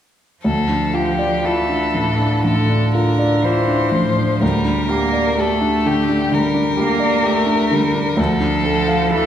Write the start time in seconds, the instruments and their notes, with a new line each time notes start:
0.43 grand piano D2, cello F3, violin A4
0.69 grand piano D4
0.94 grand piano F4, violin G4
1.19 grand piano D5
1.44 cello E3, grand piano F4, violin A4
1.69 grand piano D4
1.94 grand piano A2
2.19 grand piano D4
2.42 grand piano A2, cello D3, violin A4
2.69 grand piano D4
2.94 grand piano F4, violin A#4
3.19 grand piano D5
3.42 cello E3, grand piano F4, violin C5
3.68 grand piano D4
3.92 grand piano A2, cello F3
4.16 grand piano D4
4.41 grand piano D2, cello G3, violin A#4
4.65 grand piano D4
4.89 cello A#3, grand piano G4
5.13 grand piano D5
5.38 cello A3, grand piano G4, violin A4
5.61 grand piano D4
5.85 grand piano D3, violin G4
6.09 grand piano D4
6.31 grand piano D3, cello G3, violin A#4
6.54 grand piano D4
6.77 cello A#3, grand piano G4
7.00 grand piano D5
7.23 cello A3, grand piano G4
7.46 grand piano D4
7.71 grand piano D3, cello G3
7.94 grand piano D4
8.17 grand piano D2, cello F3, violin A4
8.40 grand piano D4
8.64 grand piano A4
8.88 grand piano F5
9.11 cello E3, grand piano A4, violin A4